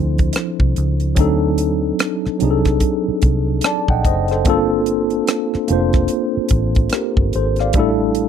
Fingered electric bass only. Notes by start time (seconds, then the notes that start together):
Already playing: D2
0.61 C2
0.78 C#2
1.18 D2
2.26 muted fingered electric bass stroke
2.42 C2
3.08 muted fingered electric bass stroke
3.23 C2
3.89 A#1
4.05 F#1
4.46 G1
5.55 muted fingered electric bass stroke
5.70 F1
6.37 muted fingered electric bass stroke
6.51 A1
7.17 G1
7.35 G#1
7.75 A1